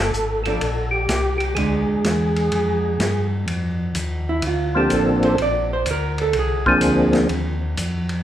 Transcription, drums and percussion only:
0.14 hi-hat pedal
0.45 ride
0.61 ride
1.09 snare, hi-hat pedal, ride
1.40 ride
1.56 ride
2.04 snare, hi-hat pedal, ride
2.36 ride
2.52 ride
3.00 snare, hi-hat pedal, ride
3.48 ride
3.95 hi-hat pedal, ride
4.42 ride
4.90 hi-hat pedal, ride
5.23 ride
5.38 ride
5.86 hi-hat pedal, ride
6.18 ride
6.33 ride
6.66 kick
6.81 hi-hat pedal, ride
7.13 snare, ride
7.29 ride
7.77 hi-hat pedal, ride
8.09 ride

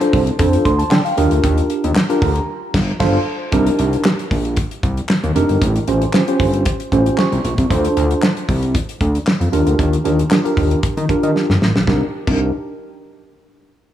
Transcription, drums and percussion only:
0.01 closed hi-hat
0.13 kick, open hi-hat
0.27 closed hi-hat
0.39 kick, closed hi-hat
0.53 closed hi-hat
0.65 kick, closed hi-hat
0.79 closed hi-hat
0.91 snare, clap
1.06 closed hi-hat
1.18 closed hi-hat
1.31 closed hi-hat
1.44 kick, closed hi-hat
1.58 closed hi-hat
1.70 closed hi-hat
1.84 closed hi-hat
1.96 snare, clap
2.10 closed hi-hat
2.22 kick, open hi-hat
2.35 closed hi-hat
2.74 kick, snare, crash
3.00 kick, snare, crash
3.52 kick, closed hi-hat
3.66 closed hi-hat
3.79 closed hi-hat
3.93 closed hi-hat
4.05 snare, clap
4.19 closed hi-hat
4.31 kick, open hi-hat
4.45 closed hi-hat
4.57 kick, closed hi-hat
4.71 closed hi-hat
4.83 kick, closed hi-hat
4.97 closed hi-hat
5.09 snare, clap
5.24 closed hi-hat
5.36 closed hi-hat
5.49 closed hi-hat
5.62 kick, closed hi-hat
5.76 closed hi-hat
5.88 closed hi-hat
6.02 closed hi-hat
6.13 snare, clap
6.28 closed hi-hat
6.39 kick, open hi-hat
6.54 closed hi-hat
6.65 kick, closed hi-hat
6.80 closed hi-hat
6.92 kick, closed hi-hat
7.06 closed hi-hat
7.18 snare, clap
7.32 closed hi-hat
7.45 closed hi-hat
7.58 kick, closed hi-hat
7.70 kick, closed hi-hat
7.85 closed hi-hat
7.97 closed hi-hat
8.11 closed hi-hat
8.22 snare, clap
8.37 closed hi-hat
8.49 kick, open hi-hat
8.63 closed hi-hat
8.75 kick, closed hi-hat
8.89 closed hi-hat
9.01 kick, closed hi-hat
9.15 closed hi-hat
9.27 snare, clap
9.41 closed hi-hat
9.53 closed hi-hat
9.67 closed hi-hat
9.79 kick, closed hi-hat
9.93 closed hi-hat
10.05 closed hi-hat
10.19 closed hi-hat
10.31 snare, clap
10.45 closed hi-hat
10.57 kick, open hi-hat
10.71 closed hi-hat
10.83 kick, closed hi-hat
10.97 closed hi-hat
11.09 kick, closed hi-hat
11.23 closed hi-hat
11.36 snare
11.50 snare
11.62 snare
11.76 snare
11.87 kick, snare
12.27 kick, crash

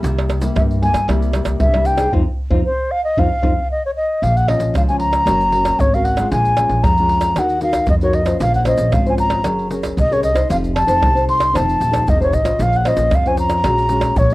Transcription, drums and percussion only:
0.04 pandeiro, shaker, surdo
0.19 pandeiro, tamborim, shaker
0.30 pandeiro, tamborim, shaker
0.42 pandeiro, shaker
0.56 pandeiro, tamborim, shaker, surdo
0.71 pandeiro, shaker
0.83 pandeiro
0.94 pandeiro, tamborim, shaker
1.09 pandeiro, tamborim, shaker, surdo
1.22 pandeiro, shaker
1.33 pandeiro, tamborim, shaker
1.45 pandeiro, tamborim, shaker
1.60 pandeiro, shaker, surdo
1.74 pandeiro, tamborim, shaker
1.85 pandeiro, shaker
1.98 pandeiro, tamborim, shaker
2.13 surdo
2.51 surdo
3.17 surdo
3.43 surdo
4.23 pandeiro, shaker, surdo
4.37 pandeiro, shaker, surdo
4.48 pandeiro, tamborim
4.60 pandeiro, shaker
4.75 pandeiro, tamborim, shaker, surdo
4.88 pandeiro, shaker
4.99 pandeiro
5.13 pandeiro, tamborim, shaker, surdo
5.27 pandeiro, tamborim, shaker, surdo
5.41 pandeiro, shaker
5.52 pandeiro
5.65 pandeiro, tamborim, shaker, surdo
5.80 pandeiro, shaker, surdo
5.94 pandeiro, shaker
6.05 pandeiro
6.17 pandeiro, tamborim, shaker, surdo
6.32 pandeiro, shaker, surdo
6.45 pandeiro, shaker, surdo
6.57 pandeiro, tamborim, shaker
6.69 pandeiro, shaker
6.84 pandeiro, tamborim, shaker, surdo
6.97 pandeiro, shaker
7.09 pandeiro
7.21 pandeiro, tamborim, shaker, surdo
7.36 pandeiro, tamborim, shaker, surdo
7.50 pandeiro, shaker
7.61 pandeiro, shaker
7.73 pandeiro, tamborim, shaker, surdo
7.87 pandeiro, shaker, surdo
8.01 pandeiro, shaker
8.13 pandeiro
8.26 pandeiro, tamborim, shaker, surdo
8.40 pandeiro, shaker, surdo
8.54 pandeiro, shaker, surdo
8.65 pandeiro, tamborim, shaker
8.78 pandeiro, shaker
8.92 pandeiro, tamborim, shaker, surdo
9.06 pandeiro, shaker
9.18 pandeiro, shaker
9.30 pandeiro, tamborim, shaker, surdo
9.44 pandeiro, tamborim, shaker, surdo
9.59 pandeiro, shaker
9.71 pandeiro, shaker
9.83 pandeiro, tamborim, shaker, surdo
9.98 pandeiro, shaker, surdo
10.12 pandeiro, shaker
10.23 pandeiro, shaker, surdo
10.35 pandeiro, tamborim, shaker, surdo
10.50 pandeiro, shaker, surdo
10.64 pandeiro, shaker, surdo
10.76 pandeiro, tamborim, shaker
10.88 pandeiro, shaker
11.02 pandeiro, tamborim, shaker, surdo
11.17 pandeiro, shaker
11.29 pandeiro
11.40 pandeiro, tamborim, shaker, surdo
11.55 pandeiro, tamborim, shaker, surdo
11.69 pandeiro, shaker
11.81 pandeiro, shaker
11.93 pandeiro, tamborim, shaker, surdo
12.08 pandeiro, shaker, surdo
12.22 pandeiro, shaker
12.33 pandeiro, shaker, surdo
12.45 pandeiro, tamborim, shaker, surdo
12.60 pandeiro, shaker, surdo
12.73 pandeiro, shaker, surdo
12.85 pandeiro, tamborim, shaker
12.97 pandeiro, shaker
13.11 pandeiro, tamborim, shaker, surdo
13.26 pandeiro, shaker
13.37 pandeiro, shaker
13.50 pandeiro, tamborim, shaker, surdo
13.64 pandeiro, tamborim, shaker, surdo
13.78 pandeiro, shaker
13.89 pandeiro, shaker
14.01 pandeiro, tamborim, shaker, surdo
14.16 pandeiro, shaker, surdo
14.30 pandeiro, shaker

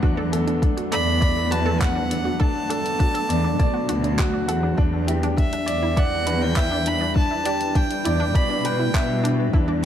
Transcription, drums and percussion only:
0.03 kick
0.33 closed hi-hat
0.48 closed hi-hat
0.62 kick, closed hi-hat
0.78 closed hi-hat
0.92 closed hi-hat
1.22 kick, closed hi-hat
1.52 closed hi-hat
1.81 kick, clap, closed hi-hat
2.11 closed hi-hat
2.40 kick
2.70 closed hi-hat
2.86 closed hi-hat
3.00 kick, closed hi-hat
3.15 closed hi-hat
3.30 closed hi-hat
3.59 kick, closed hi-hat
3.89 closed hi-hat
4.04 closed hi-hat
4.19 kick, clap, closed hi-hat
4.49 closed hi-hat
4.78 kick
5.08 closed hi-hat
5.23 closed hi-hat
5.38 kick, closed hi-hat
5.53 closed hi-hat
5.68 closed hi-hat
5.97 kick, closed hi-hat
6.27 closed hi-hat
6.56 kick, clap, closed hi-hat
6.86 closed hi-hat
7.16 kick
7.45 closed hi-hat
7.61 closed hi-hat
7.75 kick, closed hi-hat
7.91 closed hi-hat
8.05 closed hi-hat
8.35 kick, closed hi-hat
8.65 closed hi-hat
8.94 kick, clap, closed hi-hat
9.25 closed hi-hat
9.53 kick

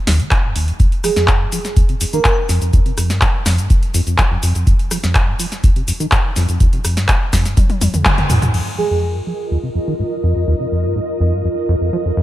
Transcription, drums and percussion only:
0.07 snare, open hi-hat
0.20 closed hi-hat
0.31 kick, clap, closed hi-hat
0.56 open hi-hat
0.68 closed hi-hat
0.80 kick, closed hi-hat, cabasa
0.92 closed hi-hat
1.04 cross-stick, open hi-hat, cabasa
1.16 snare, closed hi-hat, cabasa
1.28 kick, clap, closed hi-hat, cabasa
1.52 open hi-hat, cabasa
1.65 snare, closed hi-hat, cabasa
1.77 kick, closed hi-hat, cabasa
1.89 closed hi-hat
2.01 open hi-hat, cabasa
2.13 closed hi-hat, cabasa
2.25 kick, clap, closed hi-hat, cabasa
2.49 snare, open hi-hat, cabasa
2.62 closed hi-hat, cabasa
2.73 kick, closed hi-hat, cabasa
2.86 closed hi-hat
2.98 cross-stick, open hi-hat, cabasa
3.10 snare, closed hi-hat, cabasa
3.21 kick, clap, closed hi-hat, cabasa
3.46 cross-stick, snare, open hi-hat, cabasa
3.58 closed hi-hat, cabasa
3.70 kick, closed hi-hat, cabasa
3.83 closed hi-hat
3.94 open hi-hat, cabasa
4.07 closed hi-hat, cabasa
4.18 kick, clap, closed hi-hat, cabasa
4.43 open hi-hat, cabasa
4.55 closed hi-hat, cabasa
4.67 kick, closed hi-hat, cabasa
4.79 closed hi-hat
4.91 cross-stick, open hi-hat, cabasa
5.04 snare, closed hi-hat, cabasa
5.15 kick, clap, closed hi-hat, cabasa
5.39 open hi-hat, cabasa
5.52 snare, closed hi-hat, cabasa
5.64 kick, closed hi-hat, cabasa
5.76 closed hi-hat
5.88 open hi-hat, cabasa
6.00 closed hi-hat, cabasa
6.12 kick, clap, closed hi-hat, cabasa
6.36 snare, open hi-hat, cabasa
6.49 closed hi-hat, cabasa
6.60 kick, closed hi-hat, cabasa
6.73 closed hi-hat
6.85 cross-stick, open hi-hat, cabasa
6.97 snare, closed hi-hat, cabasa
7.08 kick, clap, closed hi-hat, cabasa
7.33 kick, cross-stick, snare, open hi-hat, cabasa
7.46 snare, closed hi-hat, cabasa
7.57 kick, closed hi-hat, high tom, cabasa
7.70 closed hi-hat, high tom
7.81 open hi-hat, high tom, cabasa
7.94 closed hi-hat, mid tom, cabasa
8.05 kick, clap, closed hi-hat, mid tom, cabasa
8.18 closed hi-hat, mid tom
8.30 mid tom, open hi-hat, cabasa
8.42 closed hi-hat, mid tom, cabasa
8.54 crash

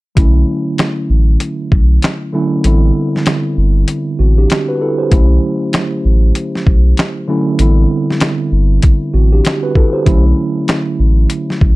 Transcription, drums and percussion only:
0.17 kick, closed hi-hat
0.78 snare, closed hi-hat
1.40 closed hi-hat
1.72 kick
2.02 snare, closed hi-hat
2.64 closed hi-hat
3.16 snare
3.26 snare, closed hi-hat
3.88 closed hi-hat
4.50 snare, closed hi-hat
5.12 kick, closed hi-hat
5.73 snare, closed hi-hat
6.35 closed hi-hat
6.55 snare
6.67 kick
6.97 snare, closed hi-hat
7.59 closed hi-hat
8.11 snare
8.20 snare, closed hi-hat
8.82 kick, closed hi-hat
9.45 snare, closed hi-hat
9.75 kick
10.06 kick, closed hi-hat
10.68 snare, closed hi-hat
11.30 closed hi-hat
11.50 snare
11.61 kick

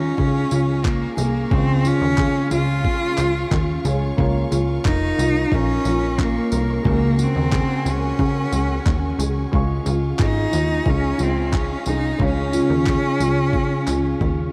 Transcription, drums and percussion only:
0.18 kick
0.51 tambourine
0.85 kick, clap
1.18 tambourine
1.51 kick
1.85 tambourine
2.18 kick, clap
2.51 tambourine
2.85 kick
3.17 clap, tambourine
3.51 kick, clap
3.85 tambourine
4.18 kick
4.52 tambourine
4.85 kick, clap
5.19 tambourine
5.52 kick
5.85 tambourine
6.19 kick, clap
6.52 tambourine
6.85 kick
7.19 tambourine
7.52 kick, clap
7.86 tambourine
8.19 kick
8.52 tambourine
8.86 kick, clap
9.20 tambourine
9.53 kick
9.86 tambourine
10.19 kick, clap
10.53 tambourine
10.86 kick
11.19 tambourine
11.53 kick, clap
11.86 tambourine
12.20 kick
12.53 tambourine
12.86 kick, clap
13.20 tambourine
13.53 kick
13.87 clap, tambourine
14.21 kick

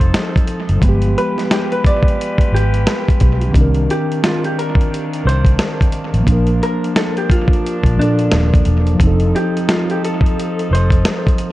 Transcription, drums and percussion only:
0.01 closed hi-hat
0.14 snare, closed hi-hat
0.36 kick, closed hi-hat
0.47 closed hi-hat
0.69 closed hi-hat
0.82 kick, closed hi-hat
1.02 closed hi-hat
1.18 closed hi-hat
1.38 snare, closed hi-hat
1.51 snare, closed hi-hat
1.72 closed hi-hat
1.84 kick, closed hi-hat
2.03 kick
2.08 closed hi-hat
2.21 closed hi-hat
2.38 kick, closed hi-hat
2.56 closed hi-hat
2.74 closed hi-hat
2.87 snare, closed hi-hat
3.08 kick, closed hi-hat
3.20 kick, closed hi-hat
3.41 closed hi-hat
3.54 kick, closed hi-hat
3.75 closed hi-hat
3.90 closed hi-hat
4.12 closed hi-hat
4.24 snare, closed hi-hat
4.44 closed hi-hat
4.59 closed hi-hat
4.75 kick
4.81 closed hi-hat
4.94 closed hi-hat
5.14 closed hi-hat
5.29 closed hi-hat
5.45 kick, closed hi-hat
5.59 snare, closed hi-hat
5.81 kick, closed hi-hat
5.92 closed hi-hat
6.14 closed hi-hat
6.27 kick, closed hi-hat
6.47 closed hi-hat
6.63 closed hi-hat
6.84 closed hi-hat
6.96 snare, closed hi-hat
7.17 closed hi-hat
7.30 kick, closed hi-hat
7.48 kick
7.53 closed hi-hat
7.66 closed hi-hat
7.84 kick, closed hi-hat
8.01 closed hi-hat
8.19 closed hi-hat
8.32 snare, closed hi-hat
8.54 kick, closed hi-hat
8.65 closed hi-hat
8.87 closed hi-hat
9.00 kick, closed hi-hat
9.20 closed hi-hat
9.36 closed hi-hat
9.57 closed hi-hat
9.69 snare, closed hi-hat
9.90 closed hi-hat
10.04 closed hi-hat
10.21 kick
10.26 closed hi-hat
10.39 closed hi-hat
10.59 closed hi-hat
10.75 closed hi-hat
10.90 kick, closed hi-hat
11.05 snare, closed hi-hat
11.27 kick, closed hi-hat
11.38 closed hi-hat

